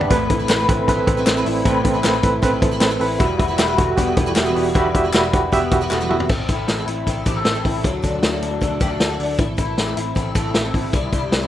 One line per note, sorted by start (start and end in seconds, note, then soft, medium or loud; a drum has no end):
0.00 0.88 B3 medium
0.00 0.11 D4 soft
0.00 0.13 D4 loud
0.00 0.15 D4 medium
0.00 0.11 G4 medium
0.00 0.13 G4 loud
0.00 0.10 B4 medium
0.00 0.11 B4 loud
0.00 0.13 D5 loud
0.00 0.12 E5 loud
0.00 floor tom loud
0.10 0.27 A1 loud
0.10 0.39 A3 medium
0.10 1.64 A3 medium
0.10 0.23 C4 loud
0.10 0.40 C4 medium
0.10 0.39 E4 medium
0.10 0.23 A4 loud
0.10 0.23 B4 loud
0.10 0.49 B4 medium
0.10 0.38 B4 medium
0.10 kick loud
0.10 closed hi-hat medium
0.30 0.46 A1 loud
0.30 0.42 C4 medium
0.30 0.69 E4 medium
0.30 0.42 A4 medium
0.30 0.43 B4 medium
0.30 kick medium
0.30 closed hi-hat medium
0.39 0.60 C4 medium
0.39 0.59 E4 medium
0.39 0.58 B4 medium
0.49 0.66 A1 loud
0.49 0.62 C4 medium
0.49 0.62 A4 medium
0.49 1.66 B4 medium
0.49 0.62 B4 medium
0.49 snare loud
0.49 clap loud
0.49 closed hi-hat medium
0.59 0.88 C4 soft
0.59 0.88 E4 medium
0.59 0.88 B4 medium
0.69 0.85 A1 medium
0.69 0.81 C4 medium
0.69 1.07 E4 medium
0.69 0.81 A4 medium
0.69 0.81 B4 medium
0.69 kick loud
0.69 closed hi-hat medium
0.88 1.04 A1 loud
0.88 1.17 A3 medium
0.88 1.00 C4 loud
0.88 1.26 C4 medium
0.88 1.17 C4 medium
0.88 1.17 E4 medium
0.88 1.01 A4 medium
0.88 1.01 B4 loud
0.88 1.16 B4 medium
0.88 kick medium
0.88 closed hi-hat medium
1.07 1.23 A1 loud
1.07 1.19 C4 medium
1.07 1.46 E4 medium
1.07 1.20 A4 medium
1.07 1.20 B4 medium
1.07 kick loud
1.07 closed hi-hat medium
1.17 1.37 A3 medium
1.17 1.37 C4 medium
1.17 1.36 E4 medium
1.17 1.36 B4 medium
1.26 1.43 A1 medium
1.26 1.39 C4 medium
1.26 2.42 C4 medium
1.26 1.39 A4 medium
1.26 1.39 B4 medium
1.26 snare loud
1.26 clap medium
1.26 closed hi-hat medium
1.37 1.64 A3 medium
1.37 1.65 C4 medium
1.37 1.66 E4 medium
1.37 1.66 B4 medium
1.45 1.62 A1 medium
1.45 1.58 C4 medium
1.45 1.84 E4 medium
1.45 1.58 A4 medium
1.45 1.58 D5 medium
1.45 open hi-hat medium
1.65 1.81 A1 loud
1.65 3.19 A3 medium
1.65 1.94 A3 medium
1.65 1.77 C4 loud
1.65 1.95 C4 medium
1.65 1.94 E4 medium
1.65 1.78 A4 loud
1.65 1.78 B4 loud
1.65 2.04 B4 medium
1.65 1.93 B4 medium
1.65 kick loud
1.65 closed hi-hat medium
1.84 2.01 A1 loud
1.84 1.97 C4 medium
1.84 2.23 E4 medium
1.84 1.97 A4 medium
1.84 1.97 B4 medium
1.84 kick medium
1.84 closed hi-hat medium
1.94 2.15 C4 medium
1.94 2.14 E4 medium
1.94 2.12 B4 medium
2.03 2.20 A1 loud
2.03 2.16 C4 medium
2.03 2.16 A4 medium
2.03 3.20 B4 medium
2.03 2.17 B4 medium
2.03 snare loud
2.03 clap loud
2.03 closed hi-hat medium
2.14 2.42 C4 soft
2.14 2.42 E4 soft
2.14 2.43 B4 medium
2.23 2.39 A1 medium
2.23 2.35 C4 medium
2.23 2.62 E4 medium
2.23 2.36 A4 medium
2.23 2.36 B4 medium
2.23 kick medium
2.23 closed hi-hat medium
2.42 2.59 A1 loud
2.42 2.71 A3 medium
2.42 2.55 C4 loud
2.42 2.71 C4 medium
2.42 2.80 C4 medium
2.42 2.71 E4 medium
2.42 2.55 A4 medium
2.42 2.55 B4 loud
2.42 2.70 B4 medium
2.42 kick medium
2.42 closed hi-hat medium
2.61 2.78 A1 medium
2.61 2.74 C4 medium
2.61 3.00 E4 medium
2.61 2.74 A4 medium
2.61 2.75 C5 medium
2.61 kick loud
2.61 closed hi-hat medium
2.71 2.91 A3 medium
2.71 2.91 C4 medium
2.71 2.90 E4 medium
2.71 2.90 B4 medium
2.80 2.97 A1 loud
2.80 2.93 C4 medium
2.80 3.24 C4 medium
2.80 2.93 A4 medium
2.80 2.94 B4 medium
2.80 snare loud
2.80 clap medium
2.80 closed hi-hat loud
2.91 3.19 A3 medium
2.91 3.20 C4 medium
2.91 3.19 E4 medium
2.91 3.20 B4 medium
3.00 3.17 A1 medium
3.00 3.13 C4 medium
3.00 3.39 E4 medium
3.00 3.13 A4 medium
3.00 3.13 B4 medium
3.00 open hi-hat medium
3.19 3.36 E1 loud
3.19 3.49 G3 medium
3.19 4.74 G3 medium
3.19 3.49 E4 medium
3.19 3.32 F#4 loud
3.19 3.48 F#4 medium
3.19 3.32 G4 loud
3.19 3.58 B4 medium
3.19 3.47 B4 medium
3.19 3.32 E5 loud
3.19 kick loud
3.19 closed hi-hat medium
3.38 3.55 E1 loud
3.38 3.51 F#4 medium
3.38 3.77 F#4 medium
3.38 3.52 G4 medium
3.38 3.52 E5 loud
3.38 kick medium
3.38 closed hi-hat medium
3.48 3.68 E4 medium
3.48 3.67 F#4 medium
3.48 3.66 B4 medium
3.58 3.75 E1 loud
3.58 3.71 F#4 medium
3.58 3.71 G4 medium
3.58 4.75 B4 medium
3.58 3.71 E5 medium
3.58 snare medium
3.58 clap loud
3.58 closed hi-hat medium
3.67 3.97 E4 medium
3.67 3.97 F#4 medium
3.67 3.97 B4 medium
3.78 3.94 E1 loud
3.78 3.90 F#4 medium
3.78 4.17 F#4 medium
3.78 3.91 G4 medium
3.78 3.91 A4 medium
3.78 kick loud
3.78 closed hi-hat medium
3.97 4.13 E1 medium
3.97 4.26 G3 medium
3.97 4.35 B3 medium
3.97 4.26 E4 medium
3.97 4.10 F#4 loud
3.97 4.25 F#4 medium
3.97 4.10 G4 loud
3.97 4.25 B4 medium
3.97 4.10 D5 loud
3.97 kick medium
3.97 closed hi-hat medium
4.16 4.33 E1 loud
4.16 4.27 E4 medium
4.16 4.29 F#4 medium
4.16 4.29 G4 medium
4.16 4.29 A4 medium
4.16 kick loud
4.16 closed hi-hat medium
4.26 4.46 E3 medium
4.26 4.46 G3 medium
4.26 4.45 E4 medium
4.26 4.45 F#4 medium
4.26 4.55 F#4 medium
4.26 4.45 B4 medium
4.36 4.52 E1 medium
4.36 5.52 B3 medium
4.36 4.48 F#4 medium
4.36 4.49 G4 medium
4.36 4.49 E5 medium
4.36 snare loud
4.36 clap medium
4.36 closed hi-hat medium
4.46 4.76 E3 medium
4.46 4.73 G3 medium
4.46 4.74 E4 medium
4.46 4.75 F#4 medium
4.46 4.75 B4 medium
4.56 4.72 E1 medium
4.56 4.66 E4 medium
4.56 4.68 F#4 medium
4.56 4.68 G4 medium
4.56 4.69 D5 loud
4.56 open hi-hat medium
4.66 4.94 F#4 soft
4.75 4.91 E1 loud
4.75 5.04 G3 medium
4.75 6.30 G3 medium
4.75 5.04 E4 medium
4.75 4.87 F#4 loud
4.75 5.04 F#4 medium
4.75 4.87 G4 loud
4.75 5.13 B4 medium
4.75 5.02 B4 medium
4.75 4.88 E5 loud
4.75 kick loud
4.75 closed hi-hat medium
4.94 5.10 E1 medium
4.94 5.04 E4 medium
4.94 5.07 F#4 medium
4.94 5.07 G4 medium
4.94 5.07 E5 medium
4.94 kick medium
4.94 closed hi-hat medium
5.04 5.24 E4 soft
5.04 5.32 F#4 soft
5.04 5.23 F#4 medium
5.04 5.22 B4 medium
5.13 5.30 E1 loud
5.13 5.26 F#4 medium
5.13 5.26 G4 medium
5.13 6.34 B4 medium
5.13 5.27 E5 medium
5.13 snare loud
5.13 clap loud
5.13 closed hi-hat medium
5.23 5.51 E4 soft
5.23 5.52 F#4 medium
5.23 5.52 B4 medium
5.33 5.49 E1 loud
5.33 5.45 F#4 medium
5.33 5.72 F#4 medium
5.33 5.46 G4 medium
5.33 5.46 G5 medium
5.33 kick loud
5.33 closed hi-hat medium
5.52 5.68 E1 loud
5.52 5.81 G3 medium
5.52 5.90 B3 medium
5.52 5.81 E4 medium
5.52 5.65 F#4 loud
5.52 5.80 F#4 medium
5.52 5.65 G4 loud
5.52 5.80 B4 medium
5.52 5.65 E5 loud
5.52 kick medium
5.52 closed hi-hat medium
5.71 5.88 E1 loud
5.71 5.81 E4 medium
5.71 5.84 F#4 medium
5.71 5.84 G4 medium
5.71 5.84 E5 medium
5.71 kick loud
5.71 closed hi-hat medium
5.81 6.01 E3 medium
5.81 6.00 G3 medium
5.81 6.00 E4 medium
5.81 6.00 F#4 medium
5.81 6.10 F#4 medium
5.81 5.99 B4 medium
5.91 6.07 E1 loud
5.91 6.29 B3 medium
5.91 6.03 F#4 medium
5.91 6.03 G4 medium
5.91 6.04 A4 loud
5.91 snare medium
5.91 clap medium
6.00 6.30 E3 medium
6.00 6.29 G3 medium
6.00 6.30 E4 medium
6.00 6.30 F#4 medium
6.00 6.30 B4 medium
6.09 6.26 E1 medium
6.09 6.20 E4 medium
6.09 6.22 F#4 medium
6.09 6.22 G4 medium
6.09 6.23 E5 medium
6.09 mid tom medium
6.20 6.34 F#4 soft
6.20 floor tom medium
6.29 6.45 A1 loud
6.29 6.47 A3 medium
6.29 6.67 C4 medium
6.29 6.48 C4 medium
6.29 6.49 E4 medium
6.29 6.50 A4 medium
6.29 kick loud
6.29 crash medium
6.48 6.65 A1 medium
6.48 6.78 A3 medium
6.48 6.78 C4 medium
6.48 6.86 E4 medium
6.48 6.77 E4 medium
6.48 6.76 A4 medium
6.48 kick medium
6.48 closed hi-hat medium
6.68 6.84 A1 loud
6.68 7.06 C4 medium
6.68 snare loud
6.68 closed hi-hat medium
6.77 7.06 A3 medium
6.77 7.07 C4 medium
6.77 7.07 E4 medium
6.77 7.07 A4 medium
6.87 7.03 A1 medium
6.87 7.64 E4 medium
6.87 closed hi-hat medium
7.07 7.23 A1 medium
7.07 7.25 A3 medium
7.07 7.44 C4 medium
7.07 7.25 C4 medium
7.07 7.26 E4 medium
7.07 7.26 A4 medium
7.07 kick medium
7.07 closed hi-hat medium
7.26 7.42 A1 medium
7.26 7.55 A2 medium
7.26 7.55 E3 medium
7.26 7.55 A3 medium
7.26 7.55 C4 medium
7.26 7.54 E4 medium
7.26 7.36 G4 medium
7.26 7.53 A4 medium
7.26 kick medium
7.26 closed hi-hat medium
7.36 7.88 A4 medium
7.45 7.61 A1 loud
7.45 7.88 C4 medium
7.45 snare loud
7.45 closed hi-hat medium
7.54 7.82 A3 soft
7.54 7.84 C4 soft
7.54 7.84 E4 medium
7.54 7.84 A4 medium
7.65 7.84 A1 medium
7.65 7.88 E4 medium
7.65 kick medium
7.65 open hi-hat medium
7.83 8.00 D2 loud
7.83 9.38 F#3 medium
7.83 8.01 A3 medium
7.83 8.02 D4 medium
7.83 8.03 F#4 medium
7.83 8.04 A4 medium
7.83 kick medium
7.83 closed hi-hat medium
8.02 8.19 D2 medium
8.02 8.32 A3 medium
8.02 8.32 D4 medium
8.02 8.41 D4 medium
8.02 8.32 F#4 medium
8.02 8.30 A4 medium
8.02 kick medium
8.02 closed hi-hat medium
8.23 8.39 D2 loud
8.23 8.61 A3 medium
8.23 snare loud
8.23 closed hi-hat medium
8.31 8.60 D4 soft
8.31 8.61 F#4 medium
8.31 8.61 A4 medium
8.42 8.58 D2 medium
8.42 9.18 D4 medium
8.42 closed hi-hat medium
8.61 8.77 D2 medium
8.61 8.79 A3 medium
8.61 8.99 A3 medium
8.61 8.80 D4 medium
8.61 8.80 F#4 medium
8.61 8.81 A4 medium
8.61 kick medium
8.61 closed hi-hat medium
8.80 8.97 D2 medium
8.80 9.09 D3 medium
8.80 9.10 A3 medium
8.80 9.10 D4 medium
8.80 9.09 F#4 medium
8.80 8.91 G4 medium
8.80 9.08 A4 medium
8.80 kick loud
8.80 closed hi-hat medium
8.91 9.43 A4 medium
9.00 9.16 D2 medium
9.00 9.43 A3 medium
9.00 snare loud
9.00 closed hi-hat medium
9.09 9.38 D4 soft
9.09 9.39 F#4 medium
9.09 9.38 A4 medium
9.19 9.35 D2 medium
9.19 9.43 D4 medium
9.19 open hi-hat medium
9.38 9.55 A1 loud
9.38 10.93 E3 medium
9.38 9.56 A3 medium
9.38 9.56 C4 medium
9.38 9.57 E4 medium
9.38 9.58 A4 medium
9.38 kick loud
9.38 closed hi-hat medium
9.57 9.74 A1 medium
9.57 9.86 A3 medium
9.57 9.86 C4 medium
9.57 9.96 E4 medium
9.57 9.85 E4 medium
9.57 9.85 A4 medium
9.57 kick medium
9.57 closed hi-hat medium
9.78 9.94 A1 loud
9.78 10.16 C4 medium
9.78 snare medium
9.78 closed hi-hat medium
9.86 10.14 A3 soft
9.86 10.15 C4 medium
9.86 10.15 E4 medium
9.86 10.15 A4 medium
9.97 10.13 A1 loud
9.97 10.74 E4 medium
9.97 closed hi-hat medium
10.15 10.32 A1 loud
10.15 10.34 A3 medium
10.15 10.35 C4 medium
10.15 10.55 C4 medium
10.15 10.35 E4 medium
10.15 10.35 A4 medium
10.15 kick medium
10.15 closed hi-hat medium
10.35 10.51 A1 medium
10.35 10.64 A2 medium
10.35 10.64 E3 medium
10.35 10.64 A3 medium
10.35 10.64 C4 medium
10.35 10.63 E4 medium
10.35 10.97 A4 medium
10.35 10.62 A4 medium
10.35 kick loud
10.35 closed hi-hat medium
10.54 10.71 A1 medium
10.54 11.32 C4 medium
10.54 snare loud
10.54 closed hi-hat medium
10.63 10.92 A3 soft
10.63 10.92 C4 medium
10.63 10.93 E4 soft
10.63 10.93 A4 medium
10.74 10.90 A1 medium
10.74 11.12 E4 medium
10.74 kick medium
10.74 open hi-hat medium
10.93 11.09 C2 medium
10.93 11.11 G3 medium
10.93 11.47 G3 medium
10.93 11.12 C4 medium
10.93 11.13 E4 medium
10.93 11.13 C5 medium
10.93 kick loud
10.93 closed hi-hat medium
11.12 11.28 C2 medium
11.12 11.41 G3 medium
11.12 11.41 C4 medium
11.12 11.47 E4 medium
11.12 11.40 E4 medium
11.12 11.39 C5 medium
11.12 kick medium
11.12 closed hi-hat medium
11.32 11.47 C2 loud
11.32 11.47 C4 medium
11.32 snare loud
11.32 closed hi-hat medium
11.41 11.47 G3 soft
11.41 11.47 C4 medium
11.41 11.47 E4 medium
11.41 11.47 C5 medium